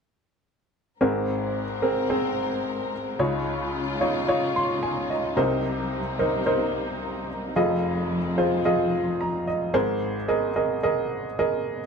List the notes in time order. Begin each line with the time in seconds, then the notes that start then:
1.00 G#1 G#2 G#3 C4 G#4 A#4
1.82 C4 G#4 A#4
2.10 C4 G#4 C5
3.19 C#2 C#3 D#4 F4 C#5
4.01 D#4 F4 C#5
4.28 D#4 F4 C#5
4.56 C6
4.83 G#5
5.10 D#5
5.37 C2 C3 G3 A#3 D#4 A#4 C5
6.19 D#4 A#4 C5
6.46 D#4 A#4 C5
7.56 F1 F2 F3 G#3 F4 G#4 D#5
8.38 F4 G#4 C5
8.65 F4 G#4 D#5
9.21 A#5
9.47 D#5
9.74 G#1 G#2 G#4 A#4 C5
10.28 G#4 A#4 D#5
10.56 G#4 A#4 D#5
10.83 G#4 A#4 D#5
11.39 G#4 A#4 D#5